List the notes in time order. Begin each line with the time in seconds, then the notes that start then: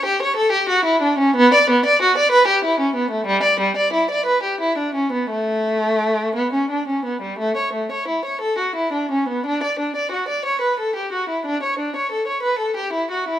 0.06 G4
0.22 C#5
0.37 A4
0.52 G4
0.69 F#4
0.85 E4
1.02 D4
1.19 C#4
1.36 B3
1.54 D5
1.70 B3
1.86 D5
2.02 F#4
2.18 D5
2.32 B4
2.48 G4
2.65 E4
2.80 C#4
2.96 B3
3.11 A3
3.26 G3
3.43 D5
3.60 G3
3.77 D5
3.93 E4
4.11 D5
4.26 B4
4.43 G4
4.61 E4
4.78 D4
4.95 C#4
5.12 B3
5.30 A3
6.35 B3
6.53 C#4
6.70 D4
6.88 C#4
7.05 B3
7.22 G3
7.38 A3
7.57 C#5
7.73 A3
7.92 C#5
8.08 E4
8.25 C#5
8.41 A4
8.59 F#4
8.75 E4
8.93 D4
9.11 C#4
9.28 B3
9.46 D4
9.63 D5
9.80 D4
9.96 D5
10.12 F#4
10.28 D5
10.45 C#5
10.61 B4
10.80 A4
10.96 G4
11.13 F#4
11.29 E4
11.46 D4
11.63 C#5
11.79 D4
11.96 C#5
12.12 A4
12.28 C#5
12.43 B4
12.59 A4
12.76 G4
12.93 E4
13.11 F#4
13.28 E4